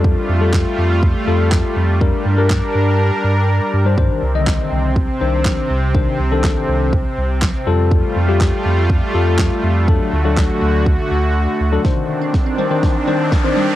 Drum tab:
CP |--x---x-|--x-----|--x---x-|--x---x-|
SD |--o---o-|--o-----|--o---o-|--o---o-|
BD |o-o-o-o-|o-o-----|o-o-o-o-|o-o-o-o-|

CP |--x---x-|--x-----|--------|
SD |--o---o-|--o-----|o-o-o-o-|
BD |o-o-o-o-|o-o-o---|o-o-o-o-|